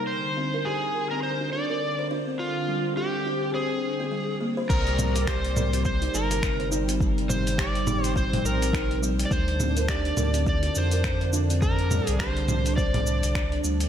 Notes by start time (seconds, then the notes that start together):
Already playing: D5
0.07 D3 C5
0.37 C4
0.54 A#4
0.65 G4 G#4
0.95 A#4
1.11 C4 A#4
1.23 C5
1.41 D4
1.53 D4 D5
1.70 A#4
1.99 C5
2.11 D4
2.27 C4
2.39 C4 F4
2.68 G3
2.97 G4
3.26 D4
3.54 G#4 C5
4.00 C4
4.12 G3
4.41 A#3
4.57 C5
4.70 C2 C3 G3 A#4 D5, kick, crash, cabasa
4.87 closed hi-hat
4.99 C4, mid tom, cabasa
5.16 A#4, closed hi-hat, cabasa
5.27 G4 C5, finger snap, kick, cabasa
5.45 closed hi-hat
5.56 A#4, mid tom, cabasa
5.73 C4, closed hi-hat, cabasa
5.85 C5, kick, cabasa
6.02 D#4, closed hi-hat
6.14 G1 D#4 A#4, cabasa
6.31 A#4, closed hi-hat, cabasa
6.43 finger snap, kick, cabasa
6.59 C5, closed hi-hat
6.71 D#4, cabasa
6.88 C4, closed hi-hat, cabasa
7.00 C4, kick, cabasa
7.18 closed hi-hat
7.29 G3 C5, mid tom, cabasa
7.47 closed hi-hat, cabasa
7.58 G4 D5, finger snap, kick, cabasa
7.75 closed hi-hat
7.87 D#4, mid tom, cabasa
8.04 C5, closed hi-hat, cabasa
8.15 C5, kick, cabasa
8.33 closed hi-hat, mid tom
8.45 A#1 A#4, cabasa
8.62 closed hi-hat, cabasa
8.73 D#4, finger snap, kick, cabasa
8.91 closed hi-hat
9.02 G3, cabasa
9.19 closed hi-hat, cabasa
9.25 D5
9.31 D2 D3 D4 C5, kick, cabasa
9.48 closed hi-hat
9.60 C4, mid tom, cabasa
9.77 A#4, closed hi-hat, cabasa
9.89 G4 D5, finger snap, kick, cabasa
10.05 closed hi-hat
10.17 D2 A#4, mid tom, cabasa
10.34 C4, closed hi-hat, cabasa
10.46 D5, kick, cabasa
10.63 D4, closed hi-hat
10.75 F2 D4 C5, cabasa
10.91 A#4, closed hi-hat, cabasa
11.04 finger snap, kick, cabasa
11.21 C5, closed hi-hat
11.33 D4, cabasa
11.50 C4, closed hi-hat, cabasa
11.62 A#4, kick, cabasa
11.79 closed hi-hat
11.91 G3, mid tom, cabasa
12.07 C2 G#4, closed hi-hat, cabasa
12.19 G4 C5, finger snap, kick, cabasa
12.37 closed hi-hat
12.48 D4, mid tom, cabasa
12.66 closed hi-hat, cabasa
12.76 C5 D5, kick, cabasa
12.94 closed hi-hat, mid tom
13.07 cabasa
13.23 C2, closed hi-hat, cabasa
13.35 D4, finger snap, kick, cabasa
13.52 C2, closed hi-hat
13.64 D2 G3, cabasa
13.80 closed hi-hat, cabasa